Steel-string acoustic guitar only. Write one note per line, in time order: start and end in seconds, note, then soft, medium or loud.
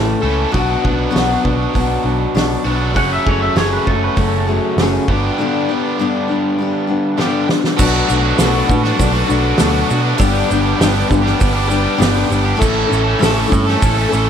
0.00 0.23 A2 medium
0.00 0.23 E3 medium
0.00 0.22 A3 medium
0.00 0.21 C#4 medium
0.00 0.19 E4 medium
0.00 0.19 A4 medium
0.20 0.52 A3 soft
0.20 0.51 C#4 soft
0.20 0.52 E4 soft
0.20 0.52 A4 soft
0.51 0.83 B2 medium
0.51 0.83 F#3 medium
0.51 0.83 B3 medium
0.51 0.83 D4 medium
0.51 0.81 F#4 medium
0.82 1.11 B3 soft
0.82 1.11 D4 medium
0.82 1.11 F#4 medium
1.11 1.43 B2 medium
1.11 1.43 F#3 medium
1.11 1.43 B3 medium
1.11 1.42 D4 medium
1.11 1.39 F#4 loud
1.40 1.72 B3 medium
1.40 1.74 D4 medium
1.40 1.73 F#4 medium
1.73 2.04 F#3 medium
1.73 2.04 B3 medium
1.73 2.02 D4 medium
1.73 2.01 F#4 medium
2.03 2.34 B3 soft
2.03 2.34 D4 soft
2.03 2.34 F#4 medium
2.35 2.65 B2 medium
2.35 2.65 F#3 medium
2.35 2.66 B3 medium
2.35 2.65 D4 medium
2.35 2.64 F#4 medium
2.65 2.95 B3 soft
2.65 2.96 D4 medium
2.65 2.95 F#4 medium
2.94 3.25 F#2 medium
2.94 3.25 C#3 medium
2.94 3.26 F#3 medium
2.94 3.26 A3 medium
2.94 3.25 C#4 medium
2.94 3.25 G#4 medium
3.26 3.55 F#3 soft
3.26 3.56 A3 medium
3.26 3.56 C#4 medium
3.26 3.56 G#4 medium
3.56 3.86 F#2 medium
3.56 3.86 C#3 medium
3.56 3.86 F#3 medium
3.56 3.87 A3 medium
3.56 3.87 C#4 medium
3.56 3.86 G#4 medium
3.87 4.15 F#3 soft
3.87 4.17 A3 medium
3.87 4.17 C#4 soft
3.87 4.17 G#4 medium
4.16 4.46 F#3 medium
4.16 4.47 A3 medium
4.16 4.47 C#4 medium
4.47 4.78 A3 medium
4.47 4.78 C#4 medium
4.47 4.77 G#4 medium
4.51 4.79 F#3 soft
4.79 5.08 F#2 medium
4.79 5.08 C#3 medium
4.79 5.09 F#3 medium
4.79 5.09 A3 medium
4.79 5.09 C#4 loud
4.79 5.10 G#4 medium
5.09 5.39 G3 soft
5.09 5.38 B3 soft
5.09 5.38 D4 medium
5.38 5.68 G2 medium
5.38 5.68 D3 medium
5.38 5.69 G3 medium
5.38 5.69 B3 medium
5.38 5.68 D4 medium
5.69 5.99 G3 soft
5.69 5.99 B3 soft
5.69 5.98 D4 soft
5.69 5.98 G4 medium
5.99 6.29 G2 medium
5.99 6.29 D3 medium
5.99 6.29 G3 medium
5.99 6.29 B3 medium
5.99 6.28 D4 medium
5.99 6.27 G4 medium
6.28 6.59 B3 medium
6.28 6.59 D4 soft
6.28 6.58 G4 medium
6.32 6.57 G3 soft
6.58 6.88 G3 medium
6.58 6.88 B3 medium
6.58 6.87 D4 medium
6.58 6.86 G4 medium
6.87 7.17 G3 soft
6.87 7.17 B3 soft
6.87 7.18 D4 soft
6.87 7.18 G4 medium
7.17 7.48 G2 medium
7.17 7.48 D3 medium
7.17 7.48 G3 medium
7.17 7.48 B3 medium
7.17 7.47 D4 medium
7.17 7.47 G4 medium
7.48 7.79 G3 soft
7.48 7.79 B3 soft
7.48 7.78 D4 soft
7.48 7.78 G4 soft
7.78 8.08 B2 medium
7.78 8.09 F#3 medium
7.78 8.09 A3 medium
7.78 8.09 D4 medium
7.78 8.07 F#4 medium
8.08 8.38 A3 soft
8.08 8.40 D4 medium
8.08 8.39 F#4 medium
8.38 8.69 B2 medium
8.38 8.69 F#3 medium
8.38 8.69 A3 medium
8.38 8.69 D4 medium
8.38 8.66 F#4 loud
8.67 8.98 D4 medium
8.67 8.98 F#4 medium
8.71 8.96 A3 soft
8.95 9.27 F#3 medium
8.95 9.28 A3 medium
8.95 9.27 D4 medium
8.95 9.25 F#4 medium
9.26 9.58 D4 medium
9.26 9.58 F#4 medium
9.30 9.58 A3 soft
9.57 9.89 B2 medium
9.57 9.89 F#3 medium
9.57 9.89 A3 medium
9.57 9.89 D4 medium
9.57 9.89 F#4 loud
9.90 10.19 A3 soft
9.90 10.19 D4 soft
9.90 10.20 F#4 medium
10.19 10.49 G2 medium
10.19 10.50 D3 medium
10.19 10.50 G3 medium
10.19 10.50 B3 medium
10.19 10.50 D4 medium
10.19 10.48 G4 loud
10.49 10.80 G3 medium
10.49 10.81 B3 medium
10.49 10.81 D4 medium
10.49 10.80 G4 medium
10.81 11.10 G2 medium
10.81 11.11 D3 loud
10.81 11.11 G3 medium
10.81 11.10 B3 medium
10.81 11.09 D4 medium
10.81 11.07 G4 medium
11.08 11.36 G3 medium
11.08 11.37 B3 medium
11.08 11.38 D4 medium
11.08 11.39 G4 medium
11.37 11.69 G3 medium
11.37 11.69 B3 medium
11.37 11.69 D4 medium
11.37 11.66 G4 medium
11.68 11.97 G3 medium
11.68 11.97 B3 soft
11.68 11.98 D4 medium
11.68 11.98 G4 medium
11.97 12.29 G2 medium
11.97 12.29 D3 medium
11.97 12.30 G3 medium
11.97 12.29 B3 medium
11.97 12.28 D4 medium
11.97 12.28 G4 loud
12.29 12.56 G3 soft
12.29 12.57 B3 soft
12.29 12.58 D4 soft
12.29 12.58 G4 medium
12.56 12.89 A2 medium
12.56 12.89 E3 medium
12.56 12.89 A3 loud
12.56 12.89 C#4 medium
12.56 12.88 E4 medium
12.56 12.86 A4 medium
12.87 13.19 C#4 medium
12.87 13.20 E4 medium
12.87 13.19 A4 medium
12.91 13.19 A3 medium
13.19 13.50 A2 medium
13.19 13.50 E3 medium
13.19 13.49 A3 medium
13.19 13.48 C#4 medium
13.19 13.47 E4 loud
13.19 13.46 A4 loud
13.48 13.75 A3 soft
13.48 13.78 C#4 medium
13.48 13.78 E4 medium
13.48 13.80 A4 medium
13.77 14.09 A3 medium
13.77 14.09 C#4 medium
13.77 14.07 E4 medium
13.81 14.08 A4 medium
14.08 14.30 A3 soft
14.08 14.30 C#4 medium
14.08 14.30 E4 medium
14.08 14.30 A4 medium